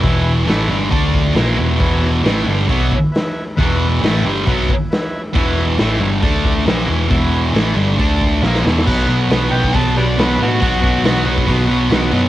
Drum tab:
CC |----------------|----------------|----------------|----------------|
HH |o---o---o---o---|o---o---o---o---|o---o---o---o---|o---o---o---o---|
SD |----o-----o-o---|--o-o-------o---|----o-------o---|--o-o-----o-o---|
BD |o-------o-o-----|o-------o-o-----|o-------o-o-----|o-------o-o-----|

CC |----------------|x---------------|----------------|
HH |o---o---o-------|----o---o---o---|o---o---o---o---|
SD |----o-----o-oooo|----o-------o---|----o-------o---|
BD |o-------o-o-----|o------oo-------|o-o----oo-------|